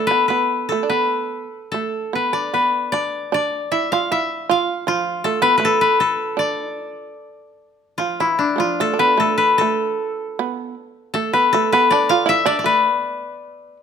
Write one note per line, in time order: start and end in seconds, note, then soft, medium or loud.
0.00 0.74 F4 medium
0.00 0.68 A4 medium
0.00 1.01 D5 medium
0.07 0.28 B4 medium
0.11 0.29 B3 medium
0.28 0.67 B3 medium
0.28 0.89 B4 medium
0.69 0.83 A3 medium
0.69 1.71 A4 medium
0.83 0.90 D4 soft
0.90 1.47 B3 medium
0.90 2.15 B4 medium
1.72 2.11 A3 soft
1.72 3.62 A4 medium
2.13 2.32 B3 medium
2.13 2.53 B4 medium
2.33 2.52 D4 medium
2.33 2.92 D5 medium
2.54 2.91 B3 medium
2.54 4.31 B4 medium
2.92 3.30 D4 medium
2.92 3.34 D5 medium
3.32 3.68 D4 medium
3.32 4.94 D5 medium
3.72 3.89 E4 medium
3.72 3.98 E5 medium
3.92 4.09 F4 medium
3.92 4.18 F5 medium
4.11 4.46 E4 medium
4.11 4.57 E5 medium
4.49 4.84 F4 medium
4.49 5.95 F5 medium
4.87 5.21 F3 medium
4.87 7.07 F4 medium
5.24 5.41 A3 medium
5.24 5.64 A4 medium
5.42 5.59 B3 medium
5.42 5.57 B4 medium
5.58 6.32 A3 medium
5.58 5.81 B4 medium
5.65 6.00 A4 medium
5.81 7.59 B4 medium
6.00 7.90 A4 medium
6.37 7.13 D4 medium
6.37 7.99 D5 medium
7.98 8.19 F3 medium
7.98 8.26 F4 medium
8.20 8.53 E3 medium
8.20 8.66 E4 medium
8.39 10.81 D4 medium
8.56 8.78 F3 medium
8.56 8.61 A3 soft
8.56 10.78 F4 medium
8.80 8.94 A3 medium
8.80 9.19 A4 medium
8.94 8.99 D4 soft
8.99 9.17 B3 medium
8.99 9.37 B4 medium
9.17 9.56 A3 medium
9.17 9.58 A4 medium
9.38 11.15 B4 medium
9.58 10.35 A3 medium
9.58 11.13 A4 medium
10.39 10.74 B3 medium
11.14 11.32 A3 medium
11.14 11.52 A4 medium
11.33 11.51 B3 medium
11.33 11.72 B4 medium
11.53 11.70 A3 medium
11.53 13.43 A4 medium
11.72 11.89 B3 medium
11.72 12.65 B4 medium
11.91 12.08 D4 medium
11.91 12.46 D5 medium
12.09 12.25 F4 medium
12.09 12.35 F5 loud
12.26 12.43 E4 medium
12.26 13.78 E5 loud
12.46 12.62 D4 medium
12.46 12.59 D5 medium
12.59 13.83 D5 medium
12.64 12.84 A3 medium
12.64 13.83 B4 medium
12.84 12.97 A#3 medium
12.97 13.76 B3 medium